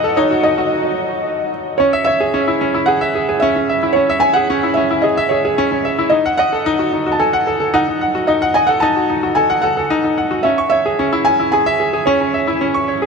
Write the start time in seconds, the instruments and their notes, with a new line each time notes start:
Already playing: grand piano D#4 F#4 A4 D#5 F#5, felt piano D#5
0.04 grand piano A4
0.16 grand piano D#4, felt piano C#5
0.31 grand piano F#4
0.43 grand piano D#4, felt piano D#5
0.58 grand piano F#4
1.78 grand piano C#4, felt piano C#5
1.93 grand piano E5
2.04 grand piano C#5, felt piano E5
2.20 grand piano G#4
2.34 grand piano C#4
2.48 grand piano E4
2.61 grand piano C#4
2.74 grand piano E4
2.86 grand piano G#4, felt piano F#5
3.01 grand piano E5
3.15 grand piano G#4
3.29 grand piano G#4
3.40 grand piano C#4, felt piano E5
3.56 grand piano C#4
3.69 grand piano E5
3.83 grand piano E4
3.93 grand piano C#4, felt piano C#5
4.10 grand piano E5
4.20 grand piano C#5, felt piano G#5
4.33 grand piano G#4, felt piano F#5
4.50 grand piano C#4
4.63 grand piano E4
4.74 grand piano C#4, felt piano E5
4.91 grand piano E4
5.02 grand piano G#4, felt piano D#5
5.17 grand piano E5
5.29 grand piano G#4, felt piano C#5
5.45 grand piano G#4
5.58 grand piano C#4
5.72 grand piano C#4
5.85 grand piano E5
5.99 grand piano E4
6.10 grand piano D#4, felt piano D#5
6.26 grand piano F#5
6.38 grand piano D#5, felt piano F#5
6.53 grand piano A4
6.66 grand piano D#4
6.79 grand piano F#4
6.93 grand piano D#4
7.06 grand piano F#4
7.12 felt piano A5
7.19 grand piano A4, felt piano G#5
7.33 grand piano F#5
7.47 grand piano A4
7.60 grand piano A4
7.74 grand piano D#4, felt piano F#5
7.88 grand piano D#4
8.01 grand piano F#5
8.15 grand piano F#4
8.27 grand piano D#4, felt piano D#5
8.42 grand piano F#5
8.54 grand piano D#5, felt piano G#5
8.67 grand piano A4, felt piano F#5
8.80 grand piano D#4, felt piano A5
8.96 grand piano F#4
9.10 grand piano D#4
9.23 grand piano F#4
9.35 grand piano A4, felt piano G#5
9.50 grand piano F#5
9.62 grand piano A4, felt piano F#5
9.77 grand piano A4
9.90 grand piano D#4
10.04 grand piano D#4
10.18 grand piano F#5
10.31 grand piano F#4
10.43 grand piano C#4, felt piano E5
10.58 grand piano C#6
10.70 grand piano C#5, felt piano E5
10.86 grand piano G#4
10.99 grand piano C#4
11.13 grand piano E4
11.25 grand piano C#4, felt piano G#5
11.39 grand piano E4
11.52 grand piano G#4, felt piano G#5
11.66 grand piano E5
11.80 grand piano G#4
11.93 grand piano G#4
12.06 grand piano C#4, felt piano C#5
12.21 grand piano C#4
12.34 grand piano E5
12.47 grand piano E4
12.61 grand piano C#4
12.74 grand piano C#6
12.88 grand piano C#5
13.02 grand piano G#4